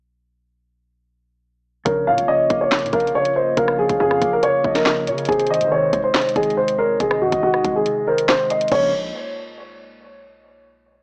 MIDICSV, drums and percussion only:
0, 0, Header, 1, 2, 480
1, 0, Start_track
1, 0, Key_signature, -5, "minor"
1, 0, Tempo, 428571
1, 2082, Time_signature, 4, 2, 24, 8
1, 12352, End_track
2, 0, Start_track
2, 0, Title_t, "Drums"
2, 2081, Note_on_c, 9, 36, 110
2, 2081, Note_on_c, 9, 42, 79
2, 2193, Note_off_c, 9, 36, 0
2, 2193, Note_off_c, 9, 42, 0
2, 2442, Note_on_c, 9, 42, 70
2, 2554, Note_off_c, 9, 42, 0
2, 2802, Note_on_c, 9, 36, 86
2, 2802, Note_on_c, 9, 42, 78
2, 2914, Note_off_c, 9, 36, 0
2, 2914, Note_off_c, 9, 42, 0
2, 3041, Note_on_c, 9, 42, 73
2, 3042, Note_on_c, 9, 38, 121
2, 3046, Note_on_c, 9, 39, 99
2, 3122, Note_off_c, 9, 42, 0
2, 3122, Note_on_c, 9, 42, 68
2, 3154, Note_off_c, 9, 38, 0
2, 3158, Note_off_c, 9, 39, 0
2, 3202, Note_off_c, 9, 42, 0
2, 3202, Note_on_c, 9, 42, 60
2, 3280, Note_off_c, 9, 42, 0
2, 3280, Note_on_c, 9, 42, 51
2, 3281, Note_on_c, 9, 36, 86
2, 3361, Note_off_c, 9, 42, 0
2, 3361, Note_on_c, 9, 42, 45
2, 3393, Note_off_c, 9, 36, 0
2, 3441, Note_off_c, 9, 42, 0
2, 3441, Note_on_c, 9, 42, 44
2, 3553, Note_off_c, 9, 42, 0
2, 3642, Note_on_c, 9, 42, 75
2, 3754, Note_off_c, 9, 42, 0
2, 4001, Note_on_c, 9, 36, 109
2, 4001, Note_on_c, 9, 42, 80
2, 4113, Note_off_c, 9, 36, 0
2, 4113, Note_off_c, 9, 42, 0
2, 4121, Note_on_c, 9, 37, 95
2, 4233, Note_off_c, 9, 37, 0
2, 4361, Note_on_c, 9, 36, 104
2, 4362, Note_on_c, 9, 42, 72
2, 4473, Note_off_c, 9, 36, 0
2, 4474, Note_off_c, 9, 42, 0
2, 4602, Note_on_c, 9, 37, 67
2, 4714, Note_off_c, 9, 37, 0
2, 4721, Note_on_c, 9, 36, 87
2, 4722, Note_on_c, 9, 42, 79
2, 4833, Note_off_c, 9, 36, 0
2, 4834, Note_off_c, 9, 42, 0
2, 4960, Note_on_c, 9, 42, 78
2, 5072, Note_off_c, 9, 42, 0
2, 5202, Note_on_c, 9, 36, 88
2, 5314, Note_off_c, 9, 36, 0
2, 5321, Note_on_c, 9, 38, 71
2, 5324, Note_on_c, 9, 42, 84
2, 5433, Note_off_c, 9, 38, 0
2, 5436, Note_off_c, 9, 42, 0
2, 5440, Note_on_c, 9, 38, 123
2, 5444, Note_on_c, 9, 39, 100
2, 5552, Note_off_c, 9, 38, 0
2, 5556, Note_off_c, 9, 39, 0
2, 5682, Note_on_c, 9, 42, 75
2, 5794, Note_off_c, 9, 42, 0
2, 5802, Note_on_c, 9, 42, 63
2, 5883, Note_off_c, 9, 42, 0
2, 5883, Note_on_c, 9, 42, 62
2, 5922, Note_on_c, 9, 36, 111
2, 5962, Note_off_c, 9, 42, 0
2, 5962, Note_on_c, 9, 42, 60
2, 6034, Note_off_c, 9, 36, 0
2, 6042, Note_off_c, 9, 42, 0
2, 6042, Note_on_c, 9, 42, 62
2, 6122, Note_off_c, 9, 42, 0
2, 6122, Note_on_c, 9, 42, 59
2, 6202, Note_off_c, 9, 42, 0
2, 6202, Note_on_c, 9, 42, 60
2, 6282, Note_off_c, 9, 42, 0
2, 6282, Note_on_c, 9, 42, 71
2, 6394, Note_off_c, 9, 42, 0
2, 6642, Note_on_c, 9, 36, 88
2, 6642, Note_on_c, 9, 42, 80
2, 6754, Note_off_c, 9, 36, 0
2, 6754, Note_off_c, 9, 42, 0
2, 6882, Note_on_c, 9, 38, 122
2, 6882, Note_on_c, 9, 42, 73
2, 6886, Note_on_c, 9, 39, 99
2, 6962, Note_off_c, 9, 42, 0
2, 6962, Note_on_c, 9, 42, 67
2, 6994, Note_off_c, 9, 38, 0
2, 6998, Note_off_c, 9, 39, 0
2, 7042, Note_off_c, 9, 42, 0
2, 7042, Note_on_c, 9, 42, 62
2, 7122, Note_off_c, 9, 42, 0
2, 7122, Note_on_c, 9, 36, 88
2, 7122, Note_on_c, 9, 42, 51
2, 7202, Note_off_c, 9, 42, 0
2, 7202, Note_on_c, 9, 42, 45
2, 7234, Note_off_c, 9, 36, 0
2, 7282, Note_off_c, 9, 42, 0
2, 7282, Note_on_c, 9, 42, 44
2, 7394, Note_off_c, 9, 42, 0
2, 7483, Note_on_c, 9, 42, 76
2, 7595, Note_off_c, 9, 42, 0
2, 7841, Note_on_c, 9, 42, 77
2, 7842, Note_on_c, 9, 36, 112
2, 7953, Note_off_c, 9, 42, 0
2, 7954, Note_off_c, 9, 36, 0
2, 7961, Note_on_c, 9, 37, 96
2, 8073, Note_off_c, 9, 37, 0
2, 8202, Note_on_c, 9, 36, 110
2, 8202, Note_on_c, 9, 42, 73
2, 8314, Note_off_c, 9, 36, 0
2, 8314, Note_off_c, 9, 42, 0
2, 8442, Note_on_c, 9, 37, 68
2, 8554, Note_off_c, 9, 37, 0
2, 8562, Note_on_c, 9, 36, 88
2, 8563, Note_on_c, 9, 42, 80
2, 8674, Note_off_c, 9, 36, 0
2, 8675, Note_off_c, 9, 42, 0
2, 8801, Note_on_c, 9, 42, 74
2, 8913, Note_off_c, 9, 42, 0
2, 9165, Note_on_c, 9, 42, 83
2, 9277, Note_off_c, 9, 42, 0
2, 9281, Note_on_c, 9, 38, 127
2, 9285, Note_on_c, 9, 39, 102
2, 9393, Note_off_c, 9, 38, 0
2, 9397, Note_off_c, 9, 39, 0
2, 9523, Note_on_c, 9, 42, 76
2, 9635, Note_off_c, 9, 42, 0
2, 9643, Note_on_c, 9, 42, 73
2, 9723, Note_off_c, 9, 42, 0
2, 9723, Note_on_c, 9, 42, 59
2, 9762, Note_on_c, 9, 36, 110
2, 9762, Note_on_c, 9, 49, 90
2, 9802, Note_off_c, 9, 42, 0
2, 9802, Note_on_c, 9, 42, 44
2, 9874, Note_off_c, 9, 36, 0
2, 9874, Note_off_c, 9, 49, 0
2, 9914, Note_off_c, 9, 42, 0
2, 12352, End_track
0, 0, End_of_file